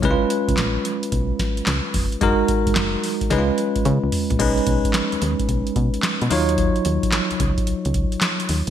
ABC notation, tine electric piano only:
X:1
M:4/4
L:1/8
Q:"Swing 16ths" 1/4=110
K:Cblyd
V:1 name="Tine electric piano"
[A,D_F=Fc]8 | [A,EGB]4 [A,DEFc]4 | [^G,^C^D=B]6- [G,CDB] [_G,EF_d]- | [G,EFd]6- [G,EFd] z |]